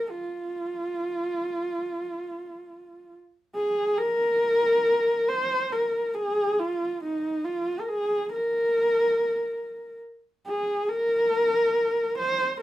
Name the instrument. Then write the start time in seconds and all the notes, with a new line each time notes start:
horsehead fiddle
Already playing: A#4
0.11 F4
3.55 G#4
3.98 A#4
5.28 C5
5.72 A#4
6.14 G#4
6.60 F4
7.04 D#4
7.45 F4
7.80 A#4
7.89 G#4
8.32 A#4
10.46 G#4
10.89 A#4
12.18 C5